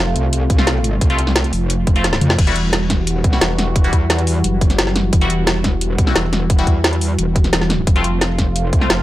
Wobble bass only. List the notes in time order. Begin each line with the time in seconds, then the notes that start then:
Already playing: F1
0.16 C2
1.01 C2
1.53 F1
1.87 F1
2.21 F2
2.39 E1
3.24 B1
3.41 E1
3.93 E2
4.44 F#1
5.13 E1
5.98 B1
6.16 E1
6.67 E2
7.19 E1
7.53 E1
7.87 F1
8.73 C2
8.90 F1